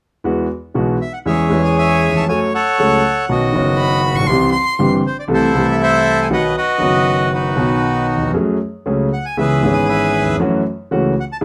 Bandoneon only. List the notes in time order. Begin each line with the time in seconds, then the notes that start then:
1.02 E5
1.13 F#5
1.26 G#4 C#5 E5
1.65 G#5
1.78 C#5 E5 G#5
2.17 A5
2.29 C#5 G#5
2.54 A4 C#5 F#5
3.31 F#4 D#5
5.07 C5
5.19 D5
5.34 E4 A4 C5
5.71 E5
5.83 A4 C5 E5
6.22 G#5
6.33 B4 D#5 F#5
6.57 F#4 B4 D#5
7.33 D#4 F#4 B4
9.13 F#5
9.25 G#5
9.38 G#4 B4 E5
9.73 G#5
9.86 B4 E5 G#5
11.20 F#5
11.32 A5